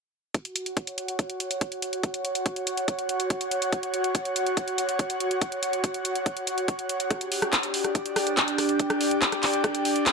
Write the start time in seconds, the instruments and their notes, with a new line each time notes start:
0.34 analog synth pad F#4, kick, closed hi-hat
0.45 closed hi-hat
0.56 analog synth pad F#5, closed hi-hat
0.65 analog synth pad C#5, closed hi-hat
0.77 kick, closed hi-hat
0.87 closed hi-hat
0.98 closed hi-hat
1.08 closed hi-hat
1.19 kick, closed hi-hat
1.30 closed hi-hat
1.40 closed hi-hat
1.51 closed hi-hat
1.61 kick, closed hi-hat
1.72 closed hi-hat
1.82 closed hi-hat
1.93 closed hi-hat
2.03 kick, closed hi-hat
2.14 closed hi-hat
2.25 closed hi-hat
2.35 closed hi-hat
2.46 kick, closed hi-hat
2.56 closed hi-hat
2.67 closed hi-hat
2.77 closed hi-hat
2.88 kick, closed hi-hat
2.99 closed hi-hat
3.09 closed hi-hat
3.20 closed hi-hat
3.30 kick, closed hi-hat
3.41 closed hi-hat
3.51 closed hi-hat
3.62 closed hi-hat
3.73 kick, closed hi-hat
3.83 closed hi-hat
3.94 closed hi-hat
4.04 closed hi-hat
4.15 kick, closed hi-hat
4.25 closed hi-hat
4.36 closed hi-hat
4.46 closed hi-hat
4.57 kick, closed hi-hat
4.68 closed hi-hat
4.78 closed hi-hat
4.89 closed hi-hat
4.99 kick, closed hi-hat
5.10 closed hi-hat
5.20 closed hi-hat
5.31 closed hi-hat
5.42 kick, closed hi-hat
5.52 closed hi-hat
5.63 closed hi-hat
5.73 closed hi-hat
5.84 kick, closed hi-hat
5.94 closed hi-hat
6.05 closed hi-hat
6.15 closed hi-hat
6.26 kick, closed hi-hat
6.37 closed hi-hat
6.47 closed hi-hat
6.58 closed hi-hat
6.68 kick, closed hi-hat
6.79 closed hi-hat
6.89 closed hi-hat
7.00 closed hi-hat
7.11 ambient pad D4, analog synth pad G4, kick, cross-stick, closed hi-hat
7.21 closed hi-hat
7.32 open hi-hat
7.42 cross-stick, closed hi-hat
7.53 kick, clap, closed hi-hat
7.60 analog synth pad D5, closed hi-hat
7.74 open hi-hat
7.84 cross-stick, closed hi-hat
7.93 analog synth pad G5, kick, closed hi-hat
8.06 closed hi-hat
8.16 cross-stick, open hi-hat
8.27 closed hi-hat
8.37 kick, clap, closed hi-hat
8.48 closed hi-hat
8.58 cross-stick, open hi-hat
8.69 closed hi-hat
8.79 kick, closed hi-hat
8.90 cross-stick, closed hi-hat
9.01 open hi-hat
9.11 closed hi-hat
9.22 kick, clap, closed hi-hat
9.32 cross-stick, closed hi-hat
9.43 clap, open hi-hat
9.53 closed hi-hat
9.64 kick, cross-stick, closed hi-hat
9.75 closed hi-hat
9.85 open hi-hat
9.96 closed hi-hat
10.06 kick, cross-stick, clap, closed hi-hat